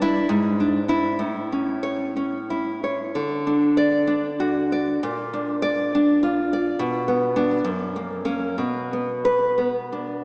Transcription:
Already playing: G2
0.02 D4 E4
0.29 G#2
0.60 D4
0.88 D4 E4
1.19 A2
1.52 C#4
1.83 C#5
2.16 C#4
2.50 E4
2.84 C#5
3.15 D3
3.47 D4
3.77 D5
4.07 D4
4.40 F#4
4.72 D5
5.03 A#2
5.33 D4
5.62 D5
5.95 D4
6.23 F4
6.53 D5
6.79 B2
7.08 B3
7.36 B3 D4
7.64 F#2
7.96 A#3
8.25 A#3 C#4
8.58 B2
8.93 B3
9.25 B4
9.58 B3
9.92 D4

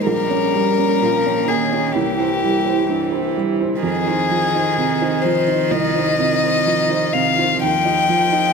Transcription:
Already playing: G#2 D#3 G#3 A#3 D#4 A#4
0.06 A#1 G3 A#4 C#5 G5
0.30 C#4 C#5
0.54 G3
0.78 C#4 C#5
1.02 A#2 F3
1.26 C#4 C#5
1.47 D#3 A#3 G#4
1.72 C#4 C#5
1.93 C2 E3 C4 E4 G4 C5
2.20 E4 C5
2.43 G3
2.66 E4 C5
2.86 G2 E3
3.12 E4 C5
3.36 G3
3.61 E4 C5
3.82 F2 D#3 F4 G#4 D#5
4.07 D#4 C5
4.31 F3
4.55 D#4 C5
4.78 C3
5.02 D#4 C5
5.22 F3 C5
5.48 D#4 C5
5.71 C2 D#5
5.95 D#4 C5
6.19 C3
6.43 D#4 C5
6.67 F3
6.90 D#4 C5
7.13 C3 F5
7.38 D#4 C5
7.62 D#2 F3 A#3 F4 D#5 G5
7.85 D#4 D#5
8.09 F3
8.32 D#4 D#5

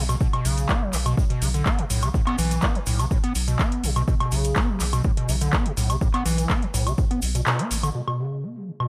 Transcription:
Already playing: B1
0.09 B2, closed hi-hat, high woodblock, shaker
0.21 B2, kick, shaker
0.33 B2, closed hi-hat, high woodblock
0.45 B1 C#3, open hi-hat, shaker
0.58 closed hi-hat, shaker
0.69 B3, kick, clap, shaker
0.82 F#3
0.93 B1 D3, clap, open hi-hat, shaker
1.06 B2, closed hi-hat, high woodblock, shaker
1.17 A2, kick, shaker
1.30 B2, closed hi-hat
1.42 B1 C#3, open hi-hat, shaker
1.54 D3, closed hi-hat, shaker
1.66 B3, kick, clap, shaker
1.78 B2, closed hi-hat
1.90 B1 A2, open hi-hat, shaker
2.02 C#3, closed hi-hat, high woodblock, shaker
2.14 A2, kick, shaker
2.27 B3, clap, closed hi-hat, high woodblock
2.38 B1 E3, open hi-hat, shaker
2.51 closed hi-hat, shaker
2.62 B3, kick, clap, shaker
2.75 D3, closed hi-hat
2.86 B1 A2, open hi-hat, shaker
2.99 C#3, closed hi-hat, high woodblock, shaker
3.11 A2, kick, shaker
3.24 B3, closed hi-hat
3.35 B1, open hi-hat, shaker
3.48 B2, closed hi-hat, shaker
3.59 B3, kick, clap, shaker
3.72 closed hi-hat
3.83 B1 B2, open hi-hat, shaker
3.96 B2, closed hi-hat, high woodblock, shaker
4.08 B2, kick, shaker
4.20 B2, closed hi-hat, high woodblock
4.32 B1 C#3, open hi-hat, shaker
4.44 closed hi-hat, shaker
4.56 B3, kick, clap, shaker
4.69 F#3
4.80 B1 D3, clap, open hi-hat, shaker
4.93 B2, closed hi-hat, high woodblock, shaker
5.04 A2, kick, shaker
5.17 B2, closed hi-hat
5.29 B1 C#3, open hi-hat, shaker
5.41 D3, closed hi-hat, shaker
5.53 B3, kick, clap, shaker
5.66 B2, closed hi-hat
5.77 B1 A2, open hi-hat, shaker
5.90 C#3, closed hi-hat, high woodblock, shaker
6.01 A2, kick, shaker
6.14 B3, clap, closed hi-hat, high woodblock
6.25 B1 E3, open hi-hat, shaker
6.38 closed hi-hat, shaker
6.50 B3, kick, clap, shaker
6.62 D3, closed hi-hat
6.74 B1 A2, open hi-hat, shaker
6.87 C#3, closed hi-hat, high woodblock, shaker
6.98 A2, kick, shaker
7.11 B3, closed hi-hat
7.22 B1, open hi-hat, shaker
7.35 B2, closed hi-hat, shaker
7.46 B2, clap, shaker
7.59 B3, closed hi-hat
7.71 A1 A3, open hi-hat, shaker
7.83 D3, closed hi-hat, high woodblock, shaker
7.95 B2
8.07 B2, high woodblock
8.19 C#3
8.43 B3
8.56 F#3
8.67 D3
8.80 B2, high woodblock

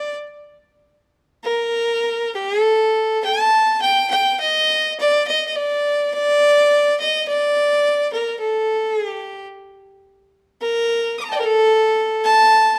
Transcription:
Already playing: D5
1.44 A#4
2.35 G4
2.60 A4
3.24 A5
3.82 G5
4.10 G5
4.40 D#5
5.00 D5
5.27 D#5
5.47 D#5
5.56 D5
6.14 D5
7.00 D#5
7.28 D5
8.13 A#4
8.40 A4
8.95 G#4
9.09 G4
10.61 A#4
11.18 D6 D#6
11.25 A#5
11.29 D#5 G5 A5
11.36 A#4 D5
11.42 A4
12.24 A5

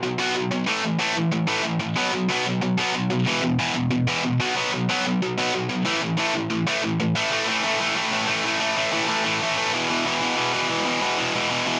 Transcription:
0.03 B2 F#3
0.18 B2 F#3 B3
0.35 B2 F#3
0.51 B2 F#3
0.66 A2 E3 A3
0.83 A2 E3
0.99 A2 E3 A3
1.15 A2 E3
1.32 A2 E3
1.47 A2 E3 A3
1.63 A2 E3
1.80 A2 E3
1.96 B2 F#3 B3
2.12 B2 F#3
2.29 B2 F#3 B3
2.46 B2 F#3
2.61 B2 F#3
2.77 B2 F#3 B3
2.95 B2 F#3
3.10 B2 F#3
3.26 E2 B2 E3
3.42 E2 B2
3.59 E2 B2 E3
3.75 E2 B2
3.91 E2 B2
4.07 E2 B2 E3
4.24 E2 B2
4.40 B2 F#3 B3
4.55 B2 F#3 B3
4.72 B2 F#3
4.89 B2 F#3 B3
5.06 B2 F#3
5.22 B2 F#3
5.38 B2 F#3 B3
5.54 B2 F#3
5.69 B2 F#3
5.85 A2 E3 A3
6.02 A2 E3
6.18 A2 E3 A3
6.34 A2 E3
6.50 A2 E3
6.67 A2 E3 A3
6.83 A2 E3
7.00 A2 E3
7.15 A2 E3 A3
7.31 A2 E3 A3
7.48 A2 E3 A3
7.64 A2 E3 A3
7.80 A2 E3 A3
7.96 A2 E3 A3
8.12 A2 E3 A3
8.28 A2 E3 A3
8.44 A2 E3 A3
8.60 A2 E3 A3
8.76 A2 E3 A3
8.91 A2 E3 A3
9.08 A2 E3 A3
9.25 A2 E3 A3
9.41 A2 E3 A3
9.57 A2 E3 A3
9.73 E2 B2 E3
9.89 E2 B2 E3
10.06 E2 B2 E3
10.21 E2 B2 E3
10.36 E2 B2 E3
10.53 E2 B2 E3
10.70 E2 B2 E3
10.86 E2 B2 E3
11.02 E2 B2 E3
11.18 E2 B2 E3
11.34 E2 B2 E3
11.50 E2 B2 E3
11.66 E2 B2 E3

